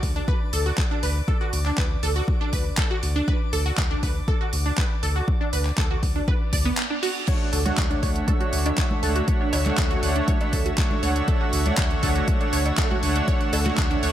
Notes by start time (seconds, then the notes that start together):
Already playing: D5 D6
0.03 D2, kick, open hi-hat
0.16 D4
0.28 B4, kick
0.53 D2 A4, open hi-hat
0.66 F#4
0.78 kick, clap
0.91 D4
1.03 D2 B4, open hi-hat
1.28 A4, kick
1.41 F#4
1.53 D2, open hi-hat
1.65 D4, clap
1.78 D2 B4, kick, clap
2.03 D2 A4, open hi-hat
2.16 F#4
2.28 kick
2.41 D4
2.53 D2 B4, kick, open hi-hat
2.78 A4, kick, clap
2.91 F#4
3.03 D2, open hi-hat
3.16 D4
3.28 B4, kick
3.53 D2 A4, open hi-hat
3.66 F#4
3.78 D2, kick, clap
3.91 D4
4.03 D2 B4, kick, open hi-hat
4.28 A4, kick
4.41 F#4
4.53 D2, open hi-hat
4.66 D4
4.78 B4, kick, clap
5.03 D2 A4, open hi-hat
5.16 F#4
5.28 kick
5.41 D4
5.53 D2 B4, open hi-hat
5.65 clap
5.78 D2 A4, kick, clap
5.91 F#4
6.03 D2, kick, open hi-hat
6.16 D4
6.28 B4, kick, reverse cymbal
6.53 D2 D5, kick, open hi-hat
6.65 B3
6.78 clap
6.90 D4
7.03 F#4, open hi-hat
7.28 D3 A3 D4 F#4 C#5 E5 F#5 E6, kick, closed hi-hat, crash
7.53 D2 A4, open hi-hat
7.65 A3 D4 F#4 C#5 F#5, closed hi-hat, high conga
7.78 D2, kick, clap, closed hi-hat
7.90 D4, closed hi-hat
8.03 D2 A3 D4 C#5 F#5, kick, open hi-hat
8.16 closed hi-hat
8.28 A4, kick, closed hi-hat, high conga
8.41 A3 D4 F#4 C#5 F#5, closed hi-hat
8.53 D2, open hi-hat
8.66 D4, closed hi-hat, cowbell
8.78 A3 D4 C#5 F#5, kick, clap, closed hi-hat
8.91 high conga
9.03 D2 A3 D4 A4 C#5 F#5, open hi-hat
9.16 F#4, closed hi-hat
9.28 A3 D4 C#5 F#5, kick, closed hi-hat
9.41 D4
9.53 D2 C#5, open hi-hat, cowbell
9.65 A3 D4 C#5 F#5, clap, closed hi-hat, high conga
9.78 D2 A4, kick, clap, closed hi-hat
9.91 F#4, closed hi-hat
10.03 D2 A3 D4 C#5 F#5, open hi-hat
10.16 D4, closed hi-hat
10.28 C#5, kick, closed hi-hat, high conga
10.41 A3 D4 C#5 F#5, closed hi-hat, cowbell
10.53 D2 A4, kick, open hi-hat
10.66 F#4, closed hi-hat
10.78 A3 D4 C#5 F#5, kick, clap, closed hi-hat
10.91 D4, high conga
11.03 D2 A3 D4 C#5 F#5, open hi-hat
11.16 closed hi-hat
11.28 A3 D4 A4 C#5 F#5, kick, closed hi-hat
11.41 F#4
11.53 D2, open hi-hat
11.66 A3 D4 C#5 F#5, closed hi-hat, high conga
11.78 D2 C#5, kick, clap, closed hi-hat
11.91 closed hi-hat
12.03 D2 A3 D4 A4 C#5 F#5, kick, open hi-hat
12.16 F#4, closed hi-hat
12.28 kick, closed hi-hat, high conga
12.41 A3 D4 C#5 F#5, closed hi-hat
12.53 D2 C#5, open hi-hat
12.66 closed hi-hat, cowbell
12.78 A3 D4 A4 C#5 F#5, kick, clap, closed hi-hat
12.91 F#4, high conga
13.03 D2 A3 D4 C#5 F#5, open hi-hat
13.16 D4, closed hi-hat
13.28 A3 D4 C#5 F#5, kick, closed hi-hat
13.41 closed hi-hat
13.53 D2 A4, open hi-hat, cowbell
13.65 A3 D4 F#4 C#5 F#5, clap, closed hi-hat, high conga
13.78 D2, kick, clap, closed hi-hat
13.91 D4, closed hi-hat
14.03 D2 A3 D4 C#5 F#5, open hi-hat